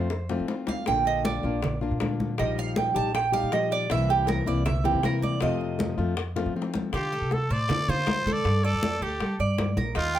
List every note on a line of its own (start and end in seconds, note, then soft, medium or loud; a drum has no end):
0.00 0.37 F2 medium
0.00 0.26 C5 medium
0.10 muted nylon-string guitar stroke medium
0.10 high bongo medium
0.10 high conga soft
0.29 0.48 F3 medium
0.29 0.49 A3 medium
0.29 0.48 C4 medium
0.29 0.48 F4 medium
0.29 low bongo medium
0.29 high conga soft
0.40 0.89 F3 medium
0.48 0.86 F3 soft
0.48 0.87 A3 soft
0.48 0.87 C4 medium
0.48 0.87 F4 medium
0.48 low bongo medium
0.48 high conga soft
0.67 0.87 F5 loud
0.67 low bongo medium
0.67 high conga medium
0.86 1.42 A#1 loud
0.86 1.43 D3 medium
0.86 1.45 A#3 medium
0.86 1.44 D4 medium
0.86 1.44 F4 medium
0.86 1.06 G5 medium
0.86 high bongo medium
0.86 high conga soft
1.05 1.25 D#5 medium
1.05 high bongo soft
1.05 high conga soft
1.24 1.78 D5 medium
1.24 high bongo medium
1.24 high conga medium
1.43 1.89 A#1 loud
1.43 1.62 A#3 medium
1.43 1.63 D4 medium
1.43 1.62 F4 medium
1.43 high bongo soft
1.43 high conga soft
1.62 muted nylon-string guitar stroke medium
1.62 high bongo medium
1.62 high conga soft
1.62 low conga medium
1.81 2.00 A#3 medium
1.81 2.00 D4 medium
1.81 2.00 F4 medium
1.81 high bongo soft
1.81 high conga soft
1.91 2.40 A#2 medium
2.00 2.38 D3 soft
2.00 2.38 A#3 medium
2.00 2.38 D4 medium
2.00 2.38 F4 medium
2.00 high bongo medium
2.00 low bongo medium
2.00 high conga medium
2.20 high conga medium
2.38 2.93 A#1 loud
2.38 2.95 F3 medium
2.38 2.96 G3 medium
2.38 2.95 D#4 medium
2.38 2.94 G4 medium
2.38 2.58 D#5 medium
2.38 high bongo medium
2.38 high conga soft
2.58 2.77 F5 loud
2.58 high conga soft
2.76 2.95 G5 medium
2.76 high bongo medium
2.76 high conga medium
2.95 3.41 A#1 medium
2.95 3.13 G3 medium
2.95 3.13 D#4 medium
2.95 3.13 G4 medium
2.95 3.14 A5 loud
2.95 high bongo soft
3.14 3.33 G5 medium
3.14 muted nylon-string guitar stroke medium
3.14 high bongo medium
3.14 high conga soft
3.32 3.51 G3 medium
3.32 3.52 D#4 medium
3.32 3.51 G4 medium
3.32 3.52 F5 loud
3.32 high bongo soft
3.32 high conga soft
3.43 3.92 A#2 medium
3.52 3.89 F3 medium
3.52 3.90 G3 medium
3.52 3.90 D#4 soft
3.52 3.90 G4 medium
3.52 3.71 D#5 medium
3.52 high bongo medium
3.52 low bongo medium
3.52 high conga soft
3.71 3.90 D5 loud
3.71 high bongo soft
3.89 4.44 C2 loud
3.89 4.46 C3 medium
3.89 4.46 E3 medium
3.89 4.46 A#3 medium
3.89 4.47 C4 medium
3.89 4.46 E4 medium
3.89 4.09 E5 loud
3.89 high bongo medium
3.89 high conga soft
4.09 4.28 G4 medium
4.09 high bongo soft
4.09 high conga soft
4.27 4.47 A#4 medium
4.27 high bongo medium
4.27 high conga medium
4.46 4.92 C2 loud
4.46 4.64 E3 medium
4.46 4.65 A#3 medium
4.46 4.65 C4 medium
4.46 4.65 E4 medium
4.46 4.65 D5 medium
4.46 high bongo soft
4.46 high conga soft
4.65 4.84 E5 medium
4.65 muted nylon-string guitar stroke medium
4.65 high bongo medium
4.65 high conga soft
4.65 low conga medium
4.84 5.02 E3 medium
4.84 5.02 A#3 medium
4.84 5.03 C4 medium
4.84 5.03 E4 medium
4.84 5.03 G4 medium
4.84 high bongo soft
4.84 high conga soft
4.84 low conga medium
4.94 5.43 C3 medium
5.03 5.41 E3 medium
5.03 5.41 A#3 medium
5.03 5.41 C4 medium
5.03 5.41 E4 medium
5.03 5.23 A#4 medium
5.03 high bongo medium
5.03 low bongo medium
5.03 high conga medium
5.22 5.42 D5 medium
5.22 high conga medium
5.41 5.96 F2 medium
5.41 5.97 C3 medium
5.41 5.97 F3 medium
5.41 5.98 A3 medium
5.41 5.97 C4 medium
5.41 5.96 F4 medium
5.41 6.51 D#5 medium
5.41 high bongo medium
5.41 high conga soft
5.61 high conga soft
5.79 high bongo soft
5.79 high conga loud
5.98 6.43 F2 medium
5.98 6.16 F3 medium
5.98 6.17 A3 medium
5.98 6.17 C4 medium
5.98 6.16 F4 medium
5.98 high bongo soft
6.17 muted nylon-string guitar stroke medium
6.17 high bongo medium
6.17 high conga soft
6.36 6.54 F3 medium
6.36 6.55 A3 medium
6.36 6.55 C4 medium
6.36 6.54 F4 medium
6.36 high bongo medium
6.36 high conga soft
6.46 6.91 F3 medium
6.55 6.93 F3 medium
6.55 6.93 A3 medium
6.55 6.93 C4 medium
6.55 6.93 F4 medium
6.55 high conga soft
6.62 low bongo medium
6.74 low bongo medium
6.74 high conga medium
6.93 7.20 D3 loud
6.93 7.12 F4 medium
6.93 7.35 G4 medium
6.93 high bongo medium
6.93 high conga soft
7.13 7.49 A4 medium
7.13 high conga soft
7.21 7.49 C3 medium
7.31 7.53 A4 medium
7.31 high bongo medium
7.31 high conga medium
7.50 7.68 A2 medium
7.50 7.69 C5 medium
7.50 7.91 D5 loud
7.69 7.87 D3 medium
7.69 7.88 A4 medium
7.69 high bongo medium
7.69 high conga soft
7.69 low conga medium
7.88 8.24 D3 loud
7.88 8.25 F4 medium
7.88 8.34 C5 loud
7.88 high conga soft
7.88 low conga medium
8.07 high bongo medium
8.07 low bongo medium
8.07 high conga medium
8.26 8.44 D3 loud
8.26 8.63 A4 medium
8.26 high conga medium
8.33 8.66 D5 loud
8.45 8.72 G2 loud
8.45 high bongo medium
8.45 high conga soft
8.64 9.04 A4 loud
8.64 9.01 D5 medium
8.64 high bongo soft
8.64 high conga soft
8.73 9.00 F2 medium
8.83 high bongo medium
8.83 high conga medium
9.01 9.19 D2 medium
9.01 9.40 G4 medium
9.01 9.38 A4 medium
9.01 high bongo soft
9.01 high conga soft
9.20 9.38 G3 medium
9.20 high bongo medium
9.20 high conga soft
9.39 9.75 G2 loud
9.39 9.76 D5 medium
9.39 high conga soft
9.58 high bongo medium
9.58 low bongo medium
9.58 high conga medium
9.77 9.95 A#1 loud
9.77 9.96 A#4 medium
9.77 high bongo soft
9.77 high conga medium
9.95 10.19 D#2 loud
9.95 10.14 D#4 medium
9.95 10.19 F4 loud
9.95 high bongo medium
9.95 high conga soft
10.15 10.19 G4 medium
10.15 high conga soft